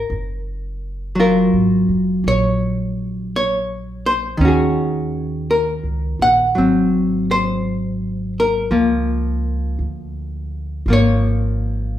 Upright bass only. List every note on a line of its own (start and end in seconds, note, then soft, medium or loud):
0.10 1.49 F#1 medium
1.53 1.86 G#1 medium
1.89 2.22 F1 medium
2.24 4.35 A#1 medium
4.39 5.79 D#2 medium
5.83 6.17 C#2 soft
6.19 6.53 A#1 medium
6.56 8.67 G#1 medium
8.71 9.75 C#2 medium
9.79 10.83 D2 medium
10.86 11.99 G#1 medium